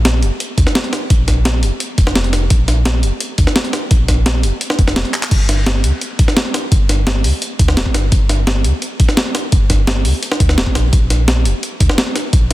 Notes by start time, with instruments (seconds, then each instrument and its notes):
Already playing: sub bass A#1
0.05 snare, closed hi-hat
0.22 sub bass F1, closed hi-hat
0.40 closed hi-hat
0.58 sub bass D2, kick, closed hi-hat
0.67 snare
0.75 snare, closed hi-hat
0.84 closed hi-hat
0.93 snare, closed hi-hat
1.10 sub bass A#1, kick, closed hi-hat
1.28 kick, snare, closed hi-hat
1.45 snare, closed hi-hat
1.63 sub bass F1, closed hi-hat
1.80 closed hi-hat
1.98 sub bass F1, kick, closed hi-hat
2.07 snare
2.15 snare, closed hi-hat
2.24 closed hi-hat
2.33 snare, closed hi-hat
2.50 sub bass A#1, kick, closed hi-hat
2.68 snare, closed hi-hat
2.85 snare, closed hi-hat
3.03 sub bass F1, closed hi-hat
3.20 closed hi-hat
3.38 sub bass D2, kick, closed hi-hat
3.47 snare
3.56 snare, closed hi-hat
3.65 closed hi-hat
3.73 snare, closed hi-hat
3.91 sub bass A#1, kick, closed hi-hat
4.08 kick, snare, closed hi-hat
4.26 snare, closed hi-hat
4.43 sub bass F1, closed hi-hat
4.61 closed hi-hat
4.70 snare
4.79 sub bass F1, kick, closed hi-hat
4.88 snare
4.96 sub bass F1, snare, closed hi-hat
5.05 closed hi-hat
5.14 clap, closed hi-hat
5.23 clap, closed hi-hat
5.31 sub bass G1, kick, closed hi-hat, crash
5.49 snare, closed hi-hat
5.66 snare, closed hi-hat
5.84 sub bass D2, closed hi-hat
6.01 closed hi-hat
6.19 sub bass A#1, kick, closed hi-hat
6.28 snare
6.37 snare, closed hi-hat
6.54 snare, closed hi-hat
6.72 sub bass G1, kick, closed hi-hat
6.89 snare, closed hi-hat
7.07 snare, closed hi-hat
7.24 sub bass D2, open hi-hat
7.42 closed hi-hat
7.59 sub bass D2, kick, closed hi-hat
7.68 snare
7.77 sub bass F1, snare, closed hi-hat
7.86 kick
7.94 sub bass G1, snare, closed hi-hat
8.12 sub bass G1, kick, closed hi-hat
8.29 snare, closed hi-hat
8.47 snare, closed hi-hat
8.64 sub bass D2, closed hi-hat
8.82 closed hi-hat
9.00 sub bass A#1, kick, closed hi-hat
9.09 snare
9.17 snare, closed hi-hat
9.35 snare, closed hi-hat
9.52 sub bass G1, kick, closed hi-hat
9.70 kick, snare, closed hi-hat
9.87 snare, closed hi-hat
10.05 sub bass D2, open hi-hat
10.23 closed hi-hat
10.32 snare
10.40 sub bass D2, kick, closed hi-hat
10.49 snare
10.58 sub bass F1, snare, closed hi-hat
10.67 kick
10.75 sub bass A#1, snare, closed hi-hat
10.93 sub bass A#1, kick, closed hi-hat
11.10 snare, closed hi-hat
11.28 snare, closed hi-hat
11.45 sub bass F1, closed hi-hat
11.63 closed hi-hat
11.80 sub bass D2, kick, closed hi-hat
11.89 snare
11.98 snare, closed hi-hat
12.16 snare, closed hi-hat
12.33 sub bass A#1, kick, closed hi-hat